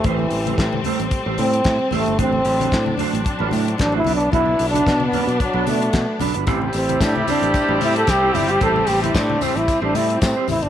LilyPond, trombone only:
\new Staff \with { instrumentName = "Trombone" } { \time 4/4 \key a \dorian \tempo 4 = 112 e4. r4 c'4 a8 | c'4. r4. \tuplet 3/2 { d'8 e'8 d'8 } | \tuplet 3/2 { e'4 d'8~ d'8 b4 } fis8 a4 r8 | r8 c'8 d'16 e'16 d'4 e'16 a'16 g'8 e'16 g'16 |
a'8 g'16 e'16 d'8 c'16 e'8 d'16 e'8 c'8 e'16 d'16 | }